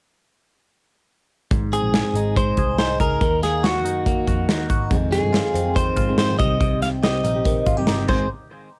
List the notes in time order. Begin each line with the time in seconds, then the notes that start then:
1.51 G#1 G#2, kick, closed hi-hat
1.73 C4 G#4, closed hi-hat
1.82 A#1
1.94 G#4, snare, closed hi-hat
2.14 G#1 D#4, closed hi-hat
2.36 G#3 C5, kick, closed hi-hat
2.57 C2 G#4, kick, closed hi-hat
2.78 C2 D#4 C5, snare, closed hi-hat
3.00 C#2 G#4 A#4, kick, closed hi-hat
3.21 D#2 D#3, kick, closed hi-hat
3.42 A#3 G#4, snare, closed hi-hat
3.63 F#4, snare, closed hi-hat
3.84 F#2 D#4, closed hi-hat
4.06 A#3, kick, closed hi-hat
4.27 F2 F#4, kick, closed hi-hat
4.49 D#2 D#4, snare, closed hi-hat
4.69 G#1 F#4, kick, closed hi-hat
4.90 F2 C3 D#3 G#3 C4 G#4, kick, closed hi-hat
5.11 G#3 G#4, snare, closed hi-hat
5.23 G2
5.33 D#3 G#3 C4 F4 G#4, snare, closed hi-hat
5.54 F2 C4, closed hi-hat
5.64 D#3 G#3 C4 G#4
5.76 D#3 C5, kick, closed hi-hat
5.96 G#2 F4, kick, closed hi-hat
6.08 F2 C3 D#3 G#3 C4 G#4
6.18 G#2 C4 C5, snare, closed hi-hat
6.29 F2 C3 D#3 G#3 C4 G#4
6.39 C2 C3 G3 C4 D#4 G4 D#5, kick, closed hi-hat
6.60 C2 C3, kick, closed hi-hat
6.81 C4 F5, snare, closed hi-hat
7.03 G3 C4 D#4 G4 D#5, snare, closed hi-hat
7.24 A#1 D#4, closed hi-hat
7.35 C4 D#4 G4
7.45 D#3, kick, closed hi-hat
7.66 G#1 F4, kick, closed hi-hat
7.77 C3 G3 C4 D#4 G4
7.87 G1 D#4, snare, closed hi-hat
7.98 C3 G3 C4 D#4 G4
8.08 G#1 G#2 D#3 G#3 C4 D#4 G#4 C5, kick, crash